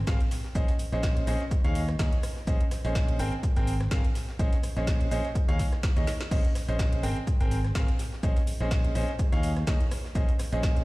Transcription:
0.07 fingered electric bass G#1, grand piano C4 G#4 A#4 F5, kick, snare, closed hi-hat, shaker
0.21 closed hi-hat
0.31 snare, open hi-hat, shaker
0.44 snare
0.55 fingered electric bass A#1, grand piano C#4 G#4 C5 D#5, kick, closed hi-hat, shaker
0.68 closed hi-hat
0.79 open hi-hat, shaker
0.92 fingered electric bass A#1, grand piano C#4 G#4 C5 D#5, snare, closed hi-hat
1.03 kick, snare, closed hi-hat, shaker
1.17 closed hi-hat
1.27 fingered electric bass A#1, grand piano C#4 G#4 C5 D#5, open hi-hat, shaker
1.40 snare, closed hi-hat
1.51 kick, closed hi-hat, shaker
1.64 fingered electric bass D#2, grand piano D#4 G#4 C#5 F5, closed hi-hat
1.75 open hi-hat, shaker
1.89 cross-stick, snare, closed hi-hat
1.99 fingered electric bass D#2, grand piano D#4 G#4 C#5 D#5, kick, snare, closed hi-hat, shaker
2.13 closed hi-hat
2.23 cross-stick, open hi-hat, shaker
2.37 snare
2.47 fingered electric bass A#1, grand piano C#4 G#4 C5 D#5, kick, closed hi-hat, shaker
2.61 closed hi-hat
2.71 cross-stick, snare, open hi-hat, shaker
2.84 fingered electric bass A#1, grand piano C#4 G#4 C5 D#5, closed hi-hat
2.95 kick, snare, closed hi-hat, shaker
3.08 closed hi-hat
3.19 fingered electric bass G#1, grand piano C4 G#4 A#4 G5, open hi-hat, shaker
3.32 closed hi-hat
3.43 kick, closed hi-hat, shaker
3.56 fingered electric bass G#1, grand piano C4 G#4 A#4 G5, closed hi-hat
3.67 open hi-hat, shaker
3.80 cross-stick, snare, closed hi-hat
3.91 fingered electric bass G#1, grand piano C4 G#4 A#4 F5, kick, snare, closed hi-hat, shaker
4.05 closed hi-hat
4.15 snare, open hi-hat, shaker
4.29 snare
4.39 fingered electric bass A#1, grand piano C#4 G#4 C5 D#5, kick, closed hi-hat, shaker
4.53 closed hi-hat
4.63 cross-stick, open hi-hat, shaker
4.76 fingered electric bass A#1, grand piano C#4 G#4 C5 D#5, snare, closed hi-hat
4.87 kick, snare, closed hi-hat, shaker
5.01 closed hi-hat
5.11 fingered electric bass A#1, grand piano C#4 G#4 C5 D#5, open hi-hat, shaker
5.25 snare, closed hi-hat
5.35 kick, closed hi-hat, shaker
5.48 fingered electric bass D#2, grand piano D#4 G#4 C#5 F5, closed hi-hat
5.59 kick, snare, open hi-hat, shaker
5.73 cross-stick, snare, closed hi-hat
5.83 kick, snare, closed hi-hat, shaker
5.96 fingered electric bass D#2, grand piano D#4 G#4 C#5 D#5, closed hi-hat
6.07 snare, open hi-hat, shaker
6.21 snare, closed hi-hat
6.31 fingered electric bass A#1, grand piano C#4 G#4 C5 D#5, kick, closed hi-hat, crash, shaker
6.45 closed hi-hat
6.55 cross-stick, snare, open hi-hat, shaker
6.68 fingered electric bass A#1, grand piano C#4 G#4 C5 D#5, closed hi-hat
6.79 kick, snare, closed hi-hat, shaker
6.93 closed hi-hat
7.03 fingered electric bass G#1, grand piano C4 G#4 A#4 G5, open hi-hat, shaker
7.17 closed hi-hat
7.27 kick, closed hi-hat, shaker
7.40 fingered electric bass G#1, grand piano C4 G#4 A#4 G5, closed hi-hat
7.51 open hi-hat, shaker
7.64 cross-stick, snare, closed hi-hat
7.75 grand piano C4 G#4 A#4 F5, kick, snare, closed hi-hat, shaker
7.88 closed hi-hat
7.99 snare, open hi-hat, shaker
8.13 snare
8.23 fingered electric bass A#1, grand piano C#4 G#4 C5 D#5, kick, closed hi-hat, shaker
8.36 closed hi-hat
8.47 open hi-hat, shaker
8.60 fingered electric bass A#1, grand piano C#4 G#4 C5 D#5, snare
8.71 kick, snare, closed hi-hat, shaker
8.84 closed hi-hat
8.95 fingered electric bass A#1, grand piano C#4 G#4 C5 D#5, open hi-hat, shaker
9.08 snare, closed hi-hat
9.19 kick, closed hi-hat, shaker
9.32 fingered electric bass D#2, grand piano D#4 G#4 C#5 F5, closed hi-hat
9.43 open hi-hat, shaker
9.56 cross-stick, snare
9.67 grand piano D#4 G#4 C#5 D#5, kick, snare, closed hi-hat, shaker
9.81 closed hi-hat
9.91 cross-stick, open hi-hat, shaker
10.04 snare
10.15 fingered electric bass A#1, grand piano C#4 G#4 C5 D#5, kick, closed hi-hat, shaker
10.29 closed hi-hat
10.39 cross-stick, snare, open hi-hat, shaker
10.52 fingered electric bass A#1, grand piano C#4 G#4 C5 D#5, closed hi-hat
10.63 kick, snare, closed hi-hat, shaker
10.77 closed hi-hat

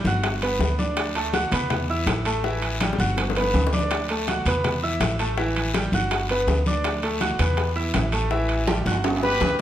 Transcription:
0.04 upright bass G1, grand piano F#4 F#5 F#6, high bongo, high conga, short guiro
0.24 high bongo, high conga, high timbale, long guiro
0.42 grand piano B3 B4 B5, high bongo, high conga, high timbale
0.59 upright bass D2, high bongo, low bongo, high conga, short guiro
0.79 grand piano D4 D5 D6, high bongo, high conga, short guiro
0.97 high bongo, high conga, high timbale, long guiro
1.15 grand piano A3 A4 A5, high conga, high timbale
1.33 grand piano F#4 F#5 F#6, high bongo, high conga, high timbale, short guiro
1.52 upright bass E2, grand piano B3 B4 B5, high conga, low conga, high timbale, short guiro
1.70 high bongo, high conga, low conga, high timbale, long guiro
1.89 grand piano E4 E5 E6, high conga
2.06 upright bass A1, high bongo, low bongo, high conga, high timbale, short guiro
2.25 grand piano A3 A4 A5, high conga, high timbale, short guiro
2.44 grand piano E3 E4 E5, high bongo, high conga, long guiro
2.62 high conga, high timbale
2.81 grand piano G3 G4 G5, high bongo, high conga, high timbale, short guiro
2.93 high bongo
2.99 upright bass G1, grand piano F#4 F#5 F#6, high conga, short guiro
3.17 low bongo, high conga, high timbale, long guiro
3.30 low bongo
3.36 grand piano B3 B4 B5, high conga, high timbale
3.42 low bongo
3.54 upright bass D2, high conga, low timbale, short guiro
3.67 low bongo
3.73 grand piano D4 D5 D6, high conga, short guiro
3.79 low bongo
3.91 high bongo, high conga, high timbale, long guiro
4.09 grand piano A3 A4 A5, high conga, high timbale
4.27 grand piano F#4 F#5 F#6, high bongo, high conga, high timbale, short guiro
4.45 upright bass E2, grand piano B3 B4 B5, high conga, low conga, high timbale, short guiro
4.64 high bongo, high conga, low conga, high timbale, long guiro
4.83 grand piano E4 E5 E6, high conga
5.00 upright bass A1, high bongo, low bongo, high conga, high timbale, short guiro
5.19 grand piano A3 A4 A5, high conga, high timbale, short guiro
5.37 grand piano E3 E4 E5, high bongo, high conga, long guiro
5.56 high conga, high timbale
5.74 grand piano G3 G4 G5, high bongo, high conga, high timbale, short guiro
5.92 upright bass G1, grand piano F#4 F#5 F#6, high bongo, high conga, short guiro
6.11 high bongo, high conga, high timbale, long guiro
6.29 grand piano B3 B4 B5, high bongo, high conga, high timbale
6.47 upright bass D2, high bongo, low bongo, high conga, low timbale, short guiro
6.66 grand piano D4 D5 D6, high bongo, high conga, short guiro
6.84 high bongo, high conga, high timbale, long guiro
7.03 grand piano A3 A4 A5, high conga, high timbale
7.21 grand piano F#4 F#5 F#6, high bongo, high conga, high timbale, short guiro
7.39 upright bass E2, grand piano B3 B4 B5, high conga, low conga, high timbale, short guiro
7.57 high bongo, high conga, high timbale, long guiro
7.76 grand piano E4 E5 E6, high conga
7.94 upright bass A1, high bongo, low bongo, high conga, high timbale, low timbale, short guiro
8.12 grand piano A3 A4 A5, high conga, high timbale, short guiro
8.31 grand piano E3 E4 E5, high bongo, high conga, long guiro
8.49 high conga, high timbale
8.67 grand piano G3 G4 G5, high bongo, high conga, high timbale, short guiro
8.86 upright bass G1, grand piano F#4 F#5 F#6, high bongo, high conga, short guiro
8.92 high timbale
9.04 high bongo, high conga, low timbale, long guiro
9.16 low timbale
9.23 grand piano B3 B4 B5, trumpet section G4 B4, high bongo, high conga
9.40 upright bass D2, high bongo, high conga, low timbale, short guiro

